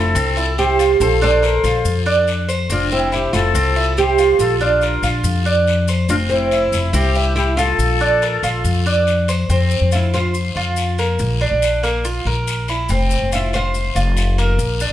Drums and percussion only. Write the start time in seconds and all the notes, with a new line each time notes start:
0.16 long guiro, maracas
0.37 maracas
0.58 short guiro, maracas
0.79 short guiro, maracas
1.01 long guiro, maracas
1.22 maracas
1.43 short guiro, maracas
1.64 short guiro, maracas
1.85 long guiro, maracas
2.06 maracas
2.27 short guiro, maracas
2.49 short guiro, maracas
2.69 long guiro, maracas
2.91 maracas
3.12 short guiro, maracas
3.34 short guiro, maracas
3.55 long guiro, maracas
3.76 maracas
3.97 short guiro, maracas
4.18 short guiro, maracas
4.39 long guiro, maracas
4.60 maracas
4.81 short guiro, maracas
5.03 short guiro, maracas
5.24 long guiro, maracas
5.46 maracas
5.67 short guiro, maracas
5.88 short guiro, maracas
6.09 long guiro, maracas
6.30 maracas
6.51 short guiro, maracas
6.73 short guiro, maracas
6.94 long guiro, maracas
7.15 maracas
7.37 short guiro, maracas
7.58 short guiro, maracas
7.79 long guiro, maracas
8.00 maracas
8.22 short guiro, maracas
8.43 short guiro, maracas
8.64 long guiro, maracas
8.86 maracas
9.07 short guiro, maracas
9.28 short guiro, maracas
9.50 long guiro, maracas
9.71 maracas
9.92 short guiro, maracas
10.13 short guiro, maracas
10.34 long guiro, maracas
10.76 short guiro, maracas
10.98 short guiro, maracas
11.19 long guiro, maracas
11.62 short guiro, maracas
11.84 short guiro, maracas
12.05 long guiro, maracas
12.47 short guiro, maracas
12.68 short guiro, maracas
12.89 long guiro, maracas
13.11 maracas
13.32 short guiro, maracas
13.53 short guiro, maracas
13.74 long guiro, maracas
13.96 maracas
14.17 short guiro, maracas
14.38 short guiro, maracas
14.59 long guiro, maracas
14.80 maracas